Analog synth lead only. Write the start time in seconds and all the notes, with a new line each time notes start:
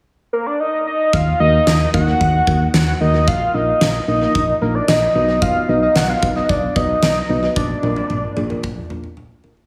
0.33 A#4
0.46 D5
0.60 D#5
0.87 D#5
1.13 F5
1.40 D#5
1.94 F#5
2.74 F#5
3.01 D#5
3.28 F5
3.54 D#5
4.08 D#5
4.61 A#4
4.75 D5
4.89 D#5
5.15 D#5
5.42 F5
5.69 D#5
5.82 D#5
5.96 F#5
6.09 F5
6.36 D#5
6.49 D5
6.76 D#5
7.56 D5